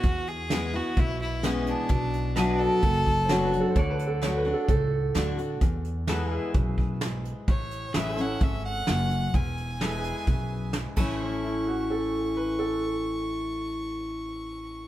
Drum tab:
CC |--------|--------|--------|--------|
HH |xxx-x-xx|xxx-x-xx|xxx-x-xx|xxx-x-xx|
SD |--o---o-|--o---o-|--o---o-|--o---o-|
BD |o---o---|o---oo--|o---o---|o---oo--|

CC |--------|-------x|--------|--------|
HH |xxxxx-xx|xxxxx-x-|--------|--------|
SD |--o---o-|--o---o-|--------|--------|
BD |o---o---|o---o--o|--------|--------|